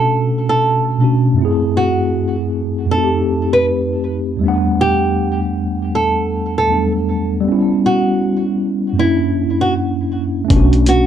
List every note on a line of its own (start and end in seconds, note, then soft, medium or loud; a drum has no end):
0.00 0.94 B2 medium
0.00 0.95 A3 medium
0.00 0.97 C#4 medium
0.00 0.98 D4 medium
0.00 1.00 F#4 medium
0.00 0.46 A4 medium
0.49 0.83 A4 medium
0.98 1.37 B2 medium
0.98 1.35 A3 soft
0.98 1.39 C#4 soft
1.02 1.39 D4 soft
1.02 1.40 F#4 medium
1.33 2.85 F#2 medium
1.33 2.86 A3 medium
1.39 2.88 C4 medium
1.39 2.89 E4 medium
1.45 2.91 G#4 medium
1.77 2.35 F#4 medium
2.85 4.37 F2 medium
2.85 4.38 A3 medium
2.91 4.40 C4 medium
2.91 4.41 D#4 medium
2.91 3.49 A4 medium
2.97 3.02 F#4 medium
3.04 4.46 G4 medium
3.53 3.65 B4 medium
4.37 6.63 E2 medium
4.37 6.65 G3 medium
4.41 6.66 A3 medium
4.41 6.67 B3 medium
4.46 6.68 D4 medium
4.46 6.69 F#5 medium
4.81 5.39 G4 medium
5.95 6.53 A4 medium
6.58 6.91 A4 medium
6.67 7.45 E2 soft
6.67 6.78 F#3 soft
6.67 7.46 A3 soft
6.67 7.43 B3 soft
6.72 7.39 G3 soft
6.72 7.47 D4 soft
6.72 7.48 A4 soft
7.41 8.92 G3 medium
7.41 8.94 B3 medium
7.48 8.96 C#4 medium
7.48 8.98 E4 medium
7.86 8.44 F#4 medium
8.93 10.44 F#2 medium
8.93 10.46 A#3 medium
8.98 10.47 C#4 medium
8.98 10.49 D4 medium
8.98 9.57 E4 medium
9.04 10.50 E4 medium
9.61 9.73 F#4 medium
10.45 11.07 A3 medium
10.45 11.07 C#4 medium
10.50 11.03 B1 loud
10.50 11.07 D4 medium
10.50 kick loud
10.50 closed hi-hat medium
10.56 11.07 F#4 medium
10.73 closed hi-hat soft
10.86 11.07 F#4 medium
10.86 closed hi-hat medium